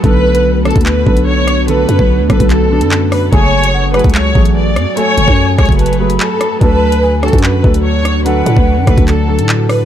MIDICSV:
0, 0, Header, 1, 7, 480
1, 0, Start_track
1, 0, Key_signature, 3, "minor"
1, 0, Tempo, 410959
1, 44, Time_signature, 4, 2, 24, 8
1, 11505, End_track
2, 0, Start_track
2, 0, Title_t, "Flute"
2, 0, Program_c, 0, 73
2, 3885, Note_on_c, 0, 80, 112
2, 4336, Note_off_c, 0, 80, 0
2, 4364, Note_on_c, 0, 78, 82
2, 4815, Note_off_c, 0, 78, 0
2, 5804, Note_on_c, 0, 80, 102
2, 6718, Note_off_c, 0, 80, 0
2, 6764, Note_on_c, 0, 81, 89
2, 6992, Note_off_c, 0, 81, 0
2, 7003, Note_on_c, 0, 83, 89
2, 7680, Note_off_c, 0, 83, 0
2, 7724, Note_on_c, 0, 81, 122
2, 8175, Note_off_c, 0, 81, 0
2, 8206, Note_on_c, 0, 80, 89
2, 8657, Note_off_c, 0, 80, 0
2, 9644, Note_on_c, 0, 78, 117
2, 10557, Note_off_c, 0, 78, 0
2, 11505, End_track
3, 0, Start_track
3, 0, Title_t, "Violin section"
3, 0, Program_c, 1, 48
3, 45, Note_on_c, 1, 71, 118
3, 721, Note_off_c, 1, 71, 0
3, 764, Note_on_c, 1, 69, 93
3, 992, Note_off_c, 1, 69, 0
3, 1004, Note_on_c, 1, 71, 98
3, 1456, Note_off_c, 1, 71, 0
3, 1484, Note_on_c, 1, 73, 103
3, 1935, Note_off_c, 1, 73, 0
3, 1965, Note_on_c, 1, 71, 107
3, 2641, Note_off_c, 1, 71, 0
3, 2685, Note_on_c, 1, 71, 90
3, 2912, Note_off_c, 1, 71, 0
3, 2924, Note_on_c, 1, 69, 94
3, 3601, Note_off_c, 1, 69, 0
3, 3643, Note_on_c, 1, 71, 85
3, 3872, Note_off_c, 1, 71, 0
3, 3885, Note_on_c, 1, 73, 117
3, 4561, Note_off_c, 1, 73, 0
3, 4603, Note_on_c, 1, 71, 99
3, 4831, Note_off_c, 1, 71, 0
3, 4844, Note_on_c, 1, 73, 97
3, 5295, Note_off_c, 1, 73, 0
3, 5324, Note_on_c, 1, 74, 89
3, 5775, Note_off_c, 1, 74, 0
3, 5804, Note_on_c, 1, 73, 126
3, 6481, Note_off_c, 1, 73, 0
3, 6524, Note_on_c, 1, 73, 98
3, 6752, Note_off_c, 1, 73, 0
3, 6764, Note_on_c, 1, 71, 89
3, 7215, Note_off_c, 1, 71, 0
3, 7244, Note_on_c, 1, 69, 95
3, 7695, Note_off_c, 1, 69, 0
3, 7725, Note_on_c, 1, 71, 123
3, 8401, Note_off_c, 1, 71, 0
3, 8444, Note_on_c, 1, 69, 95
3, 8672, Note_off_c, 1, 69, 0
3, 8685, Note_on_c, 1, 71, 95
3, 9136, Note_off_c, 1, 71, 0
3, 9164, Note_on_c, 1, 73, 97
3, 9615, Note_off_c, 1, 73, 0
3, 9642, Note_on_c, 1, 71, 95
3, 10320, Note_off_c, 1, 71, 0
3, 10363, Note_on_c, 1, 71, 93
3, 10591, Note_off_c, 1, 71, 0
3, 10603, Note_on_c, 1, 69, 90
3, 11280, Note_off_c, 1, 69, 0
3, 11324, Note_on_c, 1, 71, 86
3, 11505, Note_off_c, 1, 71, 0
3, 11505, End_track
4, 0, Start_track
4, 0, Title_t, "Ambient pad"
4, 0, Program_c, 2, 92
4, 0, Note_on_c, 2, 57, 94
4, 0, Note_on_c, 2, 66, 76
4, 46, Note_on_c, 2, 59, 84
4, 46, Note_on_c, 2, 62, 91
4, 3847, Note_off_c, 2, 59, 0
4, 3847, Note_off_c, 2, 62, 0
4, 3885, Note_on_c, 2, 54, 84
4, 3885, Note_on_c, 2, 80, 75
4, 7678, Note_off_c, 2, 57, 0
4, 7678, Note_off_c, 2, 66, 0
4, 7686, Note_off_c, 2, 54, 0
4, 7686, Note_off_c, 2, 80, 0
4, 7724, Note_on_c, 2, 62, 80
4, 7724, Note_on_c, 2, 66, 79
4, 7725, Note_on_c, 2, 50, 84
4, 7725, Note_on_c, 2, 69, 91
4, 11505, Note_off_c, 2, 50, 0
4, 11505, Note_off_c, 2, 62, 0
4, 11505, Note_off_c, 2, 66, 0
4, 11505, Note_off_c, 2, 69, 0
4, 11505, End_track
5, 0, Start_track
5, 0, Title_t, "Felt piano"
5, 0, Program_c, 3, 0
5, 0, Control_c, 3, 64, 127
5, 32, Note_on_c, 3, 50, 101
5, 44, Note_on_c, 3, 59, 89
5, 56, Note_on_c, 3, 69, 109
5, 59, Control_c, 3, 64, 0
5, 249, Control_c, 3, 64, 127
5, 480, Note_off_c, 3, 50, 0
5, 486, Note_off_c, 3, 59, 0
5, 492, Note_off_c, 3, 69, 0
5, 752, Note_on_c, 3, 50, 76
5, 764, Note_on_c, 3, 59, 69
5, 775, Note_on_c, 3, 69, 79
5, 1052, Note_off_c, 3, 50, 0
5, 1058, Note_off_c, 3, 59, 0
5, 1064, Note_off_c, 3, 69, 0
5, 1233, Note_on_c, 3, 50, 85
5, 1245, Note_on_c, 3, 59, 76
5, 1256, Note_on_c, 3, 69, 79
5, 1680, Note_off_c, 3, 50, 0
5, 1686, Note_off_c, 3, 59, 0
5, 1692, Note_off_c, 3, 69, 0
5, 1953, Note_on_c, 3, 50, 100
5, 1965, Note_on_c, 3, 59, 88
5, 1977, Note_on_c, 3, 69, 113
5, 2400, Note_off_c, 3, 50, 0
5, 2406, Note_off_c, 3, 59, 0
5, 2412, Note_off_c, 3, 69, 0
5, 2673, Note_on_c, 3, 50, 80
5, 2684, Note_on_c, 3, 59, 67
5, 2696, Note_on_c, 3, 69, 75
5, 2973, Note_off_c, 3, 50, 0
5, 2979, Note_off_c, 3, 59, 0
5, 2985, Note_off_c, 3, 69, 0
5, 3152, Note_on_c, 3, 50, 75
5, 3164, Note_on_c, 3, 59, 74
5, 3176, Note_on_c, 3, 62, 84
5, 3600, Note_off_c, 3, 50, 0
5, 3605, Note_off_c, 3, 59, 0
5, 3611, Note_off_c, 3, 62, 0
5, 3872, Note_on_c, 3, 54, 99
5, 3884, Note_on_c, 3, 57, 88
5, 3896, Note_on_c, 3, 68, 109
5, 3901, Control_c, 3, 64, 0
5, 4117, Control_c, 3, 64, 127
5, 4320, Note_off_c, 3, 54, 0
5, 4326, Note_off_c, 3, 57, 0
5, 4331, Note_off_c, 3, 68, 0
5, 4593, Note_on_c, 3, 54, 78
5, 4605, Note_on_c, 3, 57, 70
5, 4617, Note_on_c, 3, 68, 78
5, 4893, Note_off_c, 3, 54, 0
5, 4899, Note_off_c, 3, 57, 0
5, 4905, Note_off_c, 3, 68, 0
5, 5073, Note_on_c, 3, 54, 77
5, 5084, Note_on_c, 3, 57, 66
5, 5096, Note_on_c, 3, 68, 86
5, 5520, Note_off_c, 3, 54, 0
5, 5526, Note_off_c, 3, 57, 0
5, 5532, Note_off_c, 3, 68, 0
5, 5792, Note_on_c, 3, 54, 94
5, 5803, Note_on_c, 3, 57, 93
5, 5816, Note_on_c, 3, 69, 108
5, 6240, Note_off_c, 3, 54, 0
5, 6245, Note_off_c, 3, 57, 0
5, 6251, Note_off_c, 3, 69, 0
5, 6513, Note_on_c, 3, 54, 69
5, 6525, Note_on_c, 3, 57, 67
5, 6536, Note_on_c, 3, 68, 80
5, 6813, Note_off_c, 3, 54, 0
5, 6819, Note_off_c, 3, 57, 0
5, 6825, Note_off_c, 3, 68, 0
5, 6993, Note_on_c, 3, 54, 76
5, 7005, Note_on_c, 3, 57, 73
5, 7017, Note_on_c, 3, 68, 82
5, 7440, Note_off_c, 3, 54, 0
5, 7446, Note_off_c, 3, 57, 0
5, 7452, Note_off_c, 3, 68, 0
5, 7712, Note_on_c, 3, 54, 99
5, 7724, Note_on_c, 3, 62, 93
5, 7736, Note_on_c, 3, 69, 113
5, 7740, Control_c, 3, 64, 0
5, 7912, Control_c, 3, 64, 127
5, 8160, Note_off_c, 3, 54, 0
5, 8166, Note_off_c, 3, 62, 0
5, 8171, Note_off_c, 3, 69, 0
5, 8432, Note_on_c, 3, 54, 73
5, 8443, Note_on_c, 3, 62, 70
5, 8456, Note_on_c, 3, 66, 86
5, 8733, Note_off_c, 3, 54, 0
5, 8738, Note_off_c, 3, 62, 0
5, 8744, Note_off_c, 3, 66, 0
5, 8913, Note_on_c, 3, 54, 82
5, 8924, Note_on_c, 3, 62, 66
5, 8936, Note_on_c, 3, 69, 87
5, 9360, Note_off_c, 3, 54, 0
5, 9366, Note_off_c, 3, 62, 0
5, 9371, Note_off_c, 3, 69, 0
5, 9633, Note_on_c, 3, 54, 94
5, 9645, Note_on_c, 3, 62, 90
5, 9656, Note_on_c, 3, 69, 109
5, 10080, Note_off_c, 3, 54, 0
5, 10086, Note_off_c, 3, 62, 0
5, 10092, Note_off_c, 3, 69, 0
5, 10352, Note_on_c, 3, 54, 73
5, 10364, Note_on_c, 3, 62, 73
5, 10376, Note_on_c, 3, 69, 90
5, 10653, Note_off_c, 3, 54, 0
5, 10658, Note_off_c, 3, 62, 0
5, 10664, Note_off_c, 3, 69, 0
5, 10832, Note_on_c, 3, 54, 77
5, 10844, Note_on_c, 3, 62, 70
5, 10856, Note_on_c, 3, 69, 89
5, 11280, Note_off_c, 3, 54, 0
5, 11286, Note_off_c, 3, 62, 0
5, 11292, Note_off_c, 3, 69, 0
5, 11505, End_track
6, 0, Start_track
6, 0, Title_t, "808-style bass"
6, 0, Program_c, 4, 38
6, 44, Note_on_c, 4, 35, 119
6, 851, Note_off_c, 4, 35, 0
6, 884, Note_on_c, 4, 38, 98
6, 1229, Note_off_c, 4, 38, 0
6, 1245, Note_on_c, 4, 35, 100
6, 2166, Note_off_c, 4, 35, 0
6, 2204, Note_on_c, 4, 42, 105
6, 2319, Note_off_c, 4, 42, 0
6, 2325, Note_on_c, 4, 35, 114
6, 2564, Note_on_c, 4, 38, 101
6, 2582, Note_off_c, 4, 35, 0
6, 2678, Note_off_c, 4, 38, 0
6, 2683, Note_on_c, 4, 35, 105
6, 2799, Note_off_c, 4, 35, 0
6, 2804, Note_on_c, 4, 35, 107
6, 3283, Note_on_c, 4, 42, 101
6, 3301, Note_off_c, 4, 35, 0
6, 3854, Note_off_c, 4, 42, 0
6, 3884, Note_on_c, 4, 30, 118
6, 4690, Note_off_c, 4, 30, 0
6, 4723, Note_on_c, 4, 37, 100
6, 5069, Note_off_c, 4, 37, 0
6, 5084, Note_on_c, 4, 33, 104
6, 5564, Note_on_c, 4, 42, 100
6, 5581, Note_off_c, 4, 33, 0
6, 5678, Note_off_c, 4, 42, 0
6, 6044, Note_on_c, 4, 30, 105
6, 6159, Note_off_c, 4, 30, 0
6, 6165, Note_on_c, 4, 42, 105
6, 6510, Note_off_c, 4, 42, 0
6, 6523, Note_on_c, 4, 37, 104
6, 6636, Note_off_c, 4, 37, 0
6, 6643, Note_on_c, 4, 30, 98
6, 7220, Note_off_c, 4, 30, 0
6, 7724, Note_on_c, 4, 38, 116
6, 8531, Note_off_c, 4, 38, 0
6, 8564, Note_on_c, 4, 42, 96
6, 8910, Note_off_c, 4, 42, 0
6, 8925, Note_on_c, 4, 38, 103
6, 9846, Note_off_c, 4, 38, 0
6, 9884, Note_on_c, 4, 45, 107
6, 9999, Note_off_c, 4, 45, 0
6, 10005, Note_on_c, 4, 38, 112
6, 10243, Note_on_c, 4, 42, 102
6, 10261, Note_off_c, 4, 38, 0
6, 10358, Note_off_c, 4, 42, 0
6, 10363, Note_on_c, 4, 38, 102
6, 10479, Note_off_c, 4, 38, 0
6, 10484, Note_on_c, 4, 38, 106
6, 10964, Note_on_c, 4, 45, 99
6, 10982, Note_off_c, 4, 38, 0
6, 11505, Note_off_c, 4, 45, 0
6, 11505, End_track
7, 0, Start_track
7, 0, Title_t, "Drums"
7, 44, Note_on_c, 9, 36, 122
7, 45, Note_on_c, 9, 42, 79
7, 161, Note_off_c, 9, 36, 0
7, 162, Note_off_c, 9, 42, 0
7, 405, Note_on_c, 9, 42, 80
7, 522, Note_off_c, 9, 42, 0
7, 764, Note_on_c, 9, 37, 100
7, 764, Note_on_c, 9, 42, 47
7, 824, Note_off_c, 9, 42, 0
7, 824, Note_on_c, 9, 42, 55
7, 881, Note_off_c, 9, 37, 0
7, 884, Note_off_c, 9, 42, 0
7, 884, Note_on_c, 9, 36, 102
7, 884, Note_on_c, 9, 42, 67
7, 944, Note_off_c, 9, 42, 0
7, 944, Note_on_c, 9, 42, 78
7, 1000, Note_off_c, 9, 36, 0
7, 1004, Note_on_c, 9, 39, 115
7, 1061, Note_off_c, 9, 42, 0
7, 1120, Note_off_c, 9, 39, 0
7, 1245, Note_on_c, 9, 36, 98
7, 1362, Note_off_c, 9, 36, 0
7, 1362, Note_on_c, 9, 42, 78
7, 1479, Note_off_c, 9, 42, 0
7, 1723, Note_on_c, 9, 37, 100
7, 1724, Note_on_c, 9, 42, 85
7, 1840, Note_off_c, 9, 37, 0
7, 1841, Note_off_c, 9, 42, 0
7, 1965, Note_on_c, 9, 42, 81
7, 2081, Note_off_c, 9, 42, 0
7, 2205, Note_on_c, 9, 42, 90
7, 2321, Note_off_c, 9, 42, 0
7, 2325, Note_on_c, 9, 36, 94
7, 2442, Note_off_c, 9, 36, 0
7, 2683, Note_on_c, 9, 36, 93
7, 2684, Note_on_c, 9, 37, 101
7, 2684, Note_on_c, 9, 42, 74
7, 2800, Note_off_c, 9, 36, 0
7, 2801, Note_off_c, 9, 37, 0
7, 2801, Note_off_c, 9, 42, 0
7, 2804, Note_on_c, 9, 36, 103
7, 2805, Note_on_c, 9, 42, 86
7, 2921, Note_off_c, 9, 36, 0
7, 2922, Note_off_c, 9, 42, 0
7, 2923, Note_on_c, 9, 42, 76
7, 2924, Note_on_c, 9, 39, 69
7, 3040, Note_off_c, 9, 42, 0
7, 3041, Note_off_c, 9, 39, 0
7, 3282, Note_on_c, 9, 42, 77
7, 3399, Note_off_c, 9, 42, 0
7, 3404, Note_on_c, 9, 39, 109
7, 3521, Note_off_c, 9, 39, 0
7, 3643, Note_on_c, 9, 37, 100
7, 3645, Note_on_c, 9, 46, 61
7, 3760, Note_off_c, 9, 37, 0
7, 3762, Note_off_c, 9, 46, 0
7, 3884, Note_on_c, 9, 36, 123
7, 3885, Note_on_c, 9, 42, 83
7, 4001, Note_off_c, 9, 36, 0
7, 4002, Note_off_c, 9, 42, 0
7, 4246, Note_on_c, 9, 42, 78
7, 4362, Note_off_c, 9, 42, 0
7, 4604, Note_on_c, 9, 37, 96
7, 4604, Note_on_c, 9, 42, 45
7, 4664, Note_off_c, 9, 42, 0
7, 4664, Note_on_c, 9, 42, 57
7, 4721, Note_off_c, 9, 37, 0
7, 4723, Note_on_c, 9, 36, 101
7, 4724, Note_off_c, 9, 42, 0
7, 4724, Note_on_c, 9, 42, 68
7, 4784, Note_off_c, 9, 42, 0
7, 4784, Note_on_c, 9, 42, 81
7, 4840, Note_off_c, 9, 36, 0
7, 4844, Note_on_c, 9, 39, 114
7, 4900, Note_off_c, 9, 42, 0
7, 4961, Note_off_c, 9, 39, 0
7, 5085, Note_on_c, 9, 36, 104
7, 5201, Note_off_c, 9, 36, 0
7, 5202, Note_on_c, 9, 42, 76
7, 5319, Note_off_c, 9, 42, 0
7, 5563, Note_on_c, 9, 37, 100
7, 5564, Note_on_c, 9, 42, 79
7, 5680, Note_off_c, 9, 37, 0
7, 5681, Note_off_c, 9, 42, 0
7, 5804, Note_on_c, 9, 42, 82
7, 5921, Note_off_c, 9, 42, 0
7, 6045, Note_on_c, 9, 42, 88
7, 6161, Note_off_c, 9, 42, 0
7, 6165, Note_on_c, 9, 36, 96
7, 6282, Note_off_c, 9, 36, 0
7, 6523, Note_on_c, 9, 36, 94
7, 6524, Note_on_c, 9, 37, 99
7, 6524, Note_on_c, 9, 42, 47
7, 6604, Note_off_c, 9, 42, 0
7, 6604, Note_on_c, 9, 42, 53
7, 6640, Note_off_c, 9, 36, 0
7, 6641, Note_off_c, 9, 37, 0
7, 6643, Note_on_c, 9, 36, 104
7, 6684, Note_off_c, 9, 42, 0
7, 6684, Note_on_c, 9, 42, 60
7, 6760, Note_off_c, 9, 36, 0
7, 6764, Note_off_c, 9, 42, 0
7, 6764, Note_on_c, 9, 42, 64
7, 6844, Note_off_c, 9, 42, 0
7, 6844, Note_on_c, 9, 42, 71
7, 6923, Note_off_c, 9, 42, 0
7, 6923, Note_on_c, 9, 42, 75
7, 7040, Note_off_c, 9, 42, 0
7, 7122, Note_on_c, 9, 42, 80
7, 7239, Note_off_c, 9, 42, 0
7, 7244, Note_on_c, 9, 39, 114
7, 7361, Note_off_c, 9, 39, 0
7, 7483, Note_on_c, 9, 37, 102
7, 7484, Note_on_c, 9, 42, 83
7, 7600, Note_off_c, 9, 37, 0
7, 7601, Note_off_c, 9, 42, 0
7, 7724, Note_on_c, 9, 36, 120
7, 7725, Note_on_c, 9, 42, 81
7, 7841, Note_off_c, 9, 36, 0
7, 7841, Note_off_c, 9, 42, 0
7, 8085, Note_on_c, 9, 42, 80
7, 8202, Note_off_c, 9, 42, 0
7, 8444, Note_on_c, 9, 37, 98
7, 8445, Note_on_c, 9, 42, 46
7, 8505, Note_off_c, 9, 42, 0
7, 8505, Note_on_c, 9, 42, 55
7, 8561, Note_off_c, 9, 37, 0
7, 8564, Note_off_c, 9, 42, 0
7, 8564, Note_on_c, 9, 36, 105
7, 8564, Note_on_c, 9, 42, 69
7, 8625, Note_off_c, 9, 42, 0
7, 8625, Note_on_c, 9, 42, 82
7, 8680, Note_off_c, 9, 36, 0
7, 8685, Note_on_c, 9, 39, 114
7, 8741, Note_off_c, 9, 42, 0
7, 8801, Note_off_c, 9, 39, 0
7, 8925, Note_on_c, 9, 36, 101
7, 9042, Note_off_c, 9, 36, 0
7, 9043, Note_on_c, 9, 42, 79
7, 9160, Note_off_c, 9, 42, 0
7, 9403, Note_on_c, 9, 37, 99
7, 9405, Note_on_c, 9, 42, 85
7, 9520, Note_off_c, 9, 37, 0
7, 9522, Note_off_c, 9, 42, 0
7, 9645, Note_on_c, 9, 42, 84
7, 9762, Note_off_c, 9, 42, 0
7, 9885, Note_on_c, 9, 42, 87
7, 10002, Note_off_c, 9, 42, 0
7, 10005, Note_on_c, 9, 36, 94
7, 10122, Note_off_c, 9, 36, 0
7, 10363, Note_on_c, 9, 36, 93
7, 10364, Note_on_c, 9, 37, 99
7, 10364, Note_on_c, 9, 42, 74
7, 10480, Note_off_c, 9, 36, 0
7, 10481, Note_off_c, 9, 37, 0
7, 10481, Note_off_c, 9, 42, 0
7, 10484, Note_on_c, 9, 36, 101
7, 10485, Note_on_c, 9, 42, 82
7, 10601, Note_off_c, 9, 36, 0
7, 10602, Note_off_c, 9, 42, 0
7, 10603, Note_on_c, 9, 42, 80
7, 10605, Note_on_c, 9, 39, 68
7, 10720, Note_off_c, 9, 42, 0
7, 10721, Note_off_c, 9, 39, 0
7, 10963, Note_on_c, 9, 42, 80
7, 11080, Note_off_c, 9, 42, 0
7, 11085, Note_on_c, 9, 39, 115
7, 11202, Note_off_c, 9, 39, 0
7, 11323, Note_on_c, 9, 37, 100
7, 11325, Note_on_c, 9, 46, 60
7, 11440, Note_off_c, 9, 37, 0
7, 11441, Note_off_c, 9, 46, 0
7, 11505, End_track
0, 0, End_of_file